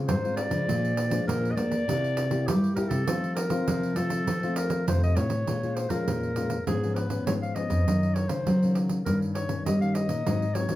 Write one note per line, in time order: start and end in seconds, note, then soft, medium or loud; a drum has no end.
0.00 0.18 G#3 medium
0.00 0.18 C4 medium
0.00 0.18 F4 medium
0.08 0.47 G#2 medium
0.08 0.65 G#2 medium
0.08 0.36 C5 medium
0.08 pandeiro medium
0.24 0.49 G#3 medium
0.24 0.49 C4 medium
0.24 0.49 F4 medium
0.24 pandeiro soft
0.36 1.23 D5 loud
0.36 pandeiro medium
0.50 0.65 C#3 medium
0.50 0.92 F3 medium
0.50 0.92 G#3 medium
0.50 0.92 D4 medium
0.50 pandeiro medium
0.68 1.25 A#2 medium
0.68 1.19 A#2 medium
0.68 pandeiro medium
0.85 pandeiro soft
0.97 pandeiro medium
1.11 1.52 F3 medium
1.11 1.52 G#3 medium
1.11 1.53 D4 medium
1.11 pandeiro medium
1.27 1.85 F2 soft
1.27 1.54 A#2 loud
1.27 1.52 A#4 loud
1.27 pandeiro medium
1.45 pandeiro soft
1.51 1.57 D#5 medium
1.56 1.75 F3 medium
1.56 1.75 G#3 medium
1.56 1.83 A#3 loud
1.56 1.75 D4 medium
1.56 2.48 D5 loud
1.56 pandeiro medium
1.71 pandeiro medium
1.88 2.45 C3 medium
1.88 2.48 C3 medium
1.88 2.28 A#3 medium
1.88 2.28 E4 medium
1.88 2.29 G4 medium
1.88 pandeiro medium
2.04 pandeiro soft
2.17 pandeiro medium
2.31 2.72 A#3 medium
2.31 2.72 E4 medium
2.31 2.73 G4 medium
2.31 pandeiro medium
2.47 3.05 G2 medium
2.47 2.86 G3 medium
2.47 2.75 G4 medium
2.47 pandeiro medium
2.64 pandeiro soft
2.75 3.03 A#3 medium
2.75 3.03 E4 medium
2.75 3.03 G4 medium
2.75 2.90 A#4 medium
2.75 pandeiro medium
2.89 3.04 C3 medium
2.89 3.34 A4 medium
2.89 pandeiro medium
3.07 3.65 F3 medium
3.07 3.59 F3 medium
3.07 3.48 A3 medium
3.07 3.48 C4 medium
3.07 3.48 F4 medium
3.07 pandeiro medium
3.24 pandeiro soft
3.35 3.98 A#4 medium
3.35 pandeiro medium
3.50 3.92 C4 medium
3.50 3.92 F4 medium
3.50 pandeiro medium
3.68 4.25 C3 medium
3.68 3.93 F3 loud
3.68 pandeiro medium
3.83 pandeiro soft
3.96 4.22 F3 medium
3.96 4.25 A3 medium
3.96 4.25 C4 soft
3.96 4.26 F4 medium
3.96 4.56 A4 medium
3.96 pandeiro medium
4.10 pandeiro medium
4.27 4.87 F3 medium
4.27 4.85 F3 medium
4.27 pandeiro medium
4.43 4.83 A3 medium
4.43 4.83 C4 medium
4.43 4.83 F4 medium
4.43 pandeiro soft
4.56 4.85 A#4 medium
4.56 pandeiro medium
4.70 pandeiro medium
4.87 5.14 F2 medium
4.87 5.45 C3 soft
4.87 5.26 A3 medium
4.87 5.26 C4 medium
4.87 5.27 F4 medium
4.87 5.02 C5 medium
4.87 pandeiro medium
5.03 5.18 D#5 medium
5.03 pandeiro soft
5.16 5.44 A2 medium
5.16 5.77 C#5 medium
5.16 pandeiro medium
5.30 pandeiro medium
5.47 6.04 A#2 soft
5.47 5.86 A#2 medium
5.47 5.56 G#3 soft
5.47 5.57 C#4 soft
5.47 5.57 F4 medium
5.47 pandeiro medium
5.63 5.88 G#3 medium
5.63 5.88 C#4 soft
5.63 5.89 F4 medium
5.63 pandeiro soft
5.75 5.91 C5 medium
5.75 pandeiro medium
5.89 6.04 F3 medium
5.89 6.31 G#3 medium
5.89 6.32 C#4 medium
5.89 6.32 F4 medium
5.89 6.66 A#4 medium
5.89 pandeiro medium
6.08 6.65 F2 medium
6.08 6.58 A#2 loud
6.08 pandeiro medium
6.23 pandeiro soft
6.36 6.56 G#3 medium
6.36 6.57 C#4 medium
6.36 6.57 F4 medium
6.36 pandeiro medium
6.50 pandeiro medium
6.67 7.18 G#2 medium
6.67 7.24 G#2 soft
6.67 6.76 F3 medium
6.67 6.76 B3 medium
6.67 6.77 C#4 medium
6.67 6.96 G#4 medium
6.67 pandeiro medium
6.83 7.08 F3 medium
6.83 7.08 B3 medium
6.83 7.09 C#4 medium
6.83 pandeiro soft
6.95 7.26 B4 medium
6.95 pandeiro medium
7.10 7.51 F3 medium
7.10 7.51 B3 medium
7.10 7.52 C#4 medium
7.10 pandeiro medium
7.26 7.84 G#2 medium
7.26 7.66 G#3 medium
7.26 7.33 C#5 medium
7.26 pandeiro medium
7.42 7.56 F5 medium
7.42 pandeiro soft
7.55 7.84 F3 medium
7.55 7.84 B3 medium
7.55 7.85 C#4 medium
7.55 8.16 D#5 medium
7.55 pandeiro medium
7.70 7.84 F2 medium
7.70 pandeiro medium
7.87 8.44 F#2 medium
7.87 8.25 F#2 medium
7.87 8.27 D#3 medium
7.87 8.28 A#3 soft
7.87 8.28 C#4 soft
7.87 pandeiro medium
8.03 pandeiro soft
8.15 8.30 C#5 medium
8.15 pandeiro medium
8.28 8.43 C#3 medium
8.28 8.56 D#3 medium
8.28 8.56 A#3 medium
8.28 8.56 C#4 medium
8.28 8.78 C5 medium
8.28 pandeiro medium
8.47 9.04 C#3 medium
8.47 8.98 F#3 loud
8.47 pandeiro medium
8.63 9.03 D#3 medium
8.63 9.03 A#3 medium
8.63 9.03 C#4 medium
8.63 pandeiro soft
8.75 pandeiro medium
8.89 pandeiro medium
9.05 9.64 G2 medium
9.05 9.58 G2 medium
9.05 9.47 D#3 soft
9.05 9.47 A#3 medium
9.05 9.47 C#4 medium
9.05 9.19 A#4 medium
9.05 pandeiro medium
9.22 pandeiro soft
9.34 9.63 C#5 medium
9.34 pandeiro medium
9.49 9.76 D#3 medium
9.49 9.76 A#3 medium
9.49 9.76 C#4 medium
9.49 pandeiro medium
9.65 10.24 G2 medium
9.65 10.05 G3 medium
9.65 9.80 D#5 medium
9.65 pandeiro medium
9.81 10.22 D#3 medium
9.81 10.23 A#3 medium
9.81 10.23 C#4 medium
9.81 9.96 F5 medium
9.81 pandeiro soft
9.94 10.56 D#5 medium
9.94 pandeiro medium
10.09 10.23 A#2 medium
10.09 pandeiro medium
10.26 10.76 G#2 medium
10.26 10.65 G#2 medium
10.26 10.44 F#3 soft
10.26 10.44 C4 soft
10.26 10.45 D#4 medium
10.26 pandeiro medium
10.42 pandeiro soft
10.55 10.66 F#3 soft
10.55 10.66 C4 soft
10.55 10.67 D#4 soft
10.55 10.76 C#5 medium
10.55 pandeiro medium
10.69 10.76 D#3 medium
10.69 10.76 F#3 medium
10.69 10.76 C4 medium
10.69 10.76 D#4 medium
10.69 pandeiro medium